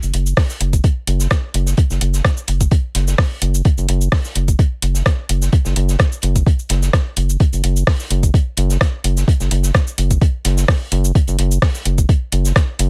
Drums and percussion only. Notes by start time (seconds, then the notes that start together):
0.03 closed hi-hat, cabasa
0.14 closed hi-hat
0.26 cabasa
0.37 kick, cross-stick, snare, open hi-hat
0.50 snare, cabasa
0.60 closed hi-hat
0.73 kick, closed hi-hat, cabasa
0.84 kick, closed hi-hat
1.07 closed hi-hat
1.20 snare, cabasa
1.30 kick, cross-stick, snare, closed hi-hat
1.54 closed hi-hat
1.66 snare, cabasa
1.77 kick, closed hi-hat
1.90 snare, cabasa
2.01 closed hi-hat
2.14 snare, cabasa
2.24 kick, cross-stick, snare, closed hi-hat
2.37 cabasa
2.48 closed hi-hat
2.61 kick, closed hi-hat, cabasa
2.71 kick, closed hi-hat
2.95 snare, closed hi-hat
3.08 snare, cabasa
3.18 kick, cross-stick, snare, open hi-hat
3.42 closed hi-hat
3.54 cabasa
3.65 kick, closed hi-hat
3.78 closed hi-hat, cabasa
3.89 closed hi-hat
4.01 cabasa
4.12 kick, cross-stick, snare, open hi-hat
4.25 snare, cabasa
4.35 closed hi-hat
4.48 kick, closed hi-hat, cabasa
4.59 kick, closed hi-hat
4.82 closed hi-hat
4.94 snare, cabasa
5.06 kick, cross-stick, snare, closed hi-hat
5.29 closed hi-hat
5.42 snare, cabasa
5.52 kick, closed hi-hat
5.65 snare, cabasa
5.76 closed hi-hat
5.89 snare, cabasa
5.99 kick, cross-stick, snare, closed hi-hat
6.12 cabasa
6.22 closed hi-hat
6.36 kick, closed hi-hat, cabasa
6.46 kick, closed hi-hat
6.59 cabasa
6.69 snare, closed hi-hat
6.83 snare, cabasa
6.93 kick, cross-stick, snare, closed hi-hat
7.16 closed hi-hat
7.29 cabasa
7.40 kick, closed hi-hat
7.53 closed hi-hat, cabasa
7.64 closed hi-hat
7.76 cabasa
7.87 kick, cross-stick, snare, open hi-hat
8.00 snare, cabasa
8.11 closed hi-hat
8.23 kick, closed hi-hat, cabasa
8.34 kick, closed hi-hat
8.57 closed hi-hat
8.70 snare, cabasa
8.81 kick, cross-stick, snare, closed hi-hat
9.04 closed hi-hat
9.17 snare, cabasa
9.28 kick, closed hi-hat
9.40 snare, cabasa
9.51 closed hi-hat
9.63 snare, cabasa
9.74 kick, cross-stick, snare, closed hi-hat
9.87 cabasa
9.98 closed hi-hat
10.11 kick, closed hi-hat, cabasa
10.21 kick, closed hi-hat
10.45 snare, closed hi-hat
10.57 snare, cabasa
10.68 kick, cross-stick, snare, open hi-hat
10.92 closed hi-hat
11.04 cabasa
11.15 kick, closed hi-hat
11.27 closed hi-hat, cabasa
11.39 closed hi-hat
11.51 cabasa
11.62 kick, cross-stick, snare, open hi-hat
11.75 snare, cabasa
11.85 closed hi-hat
11.98 kick, closed hi-hat, cabasa
12.09 kick, closed hi-hat
12.32 closed hi-hat
12.45 snare, cabasa
12.56 kick, cross-stick, snare, closed hi-hat
12.79 closed hi-hat